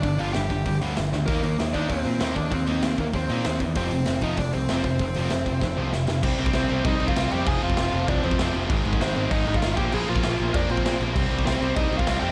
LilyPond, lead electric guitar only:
\new Staff \with { instrumentName = "Lead electric guitar" } { \time 4/4 \key c \minor \tempo 4 = 194 <d' d''>8 <f' f''>8 <g' g''>4. r4. | <bes bes'>4 r8 <d' d''>8 <c' c''>4 <c' c''>8 <d' d''>8 | <c' c''>4. <bes bes'>8 <c' c''>4. r8 | <c' c''>4. <ees' ees''>8 <d' d''>8 <c' c''>4 <c' c''>8~ |
<c' c''>2. r4 | r4 <c' c''>4 <ees' ees''>8. <f' f''>8. <g' g''>8 | <aes' aes''>8 <f' f''>4. <d' d''>8 <c' c''>4 r8 | r4 <c' c''>4 <ees' ees''>8. <f' f''>8. <g' g''>8 |
<aes' aes''>8 <f' f''>4. <d' d''>8 <c' c''>4 r8 | r4 <c' c''>4 <ees' ees''>8. <f' f''>8. <g' g''>8 | }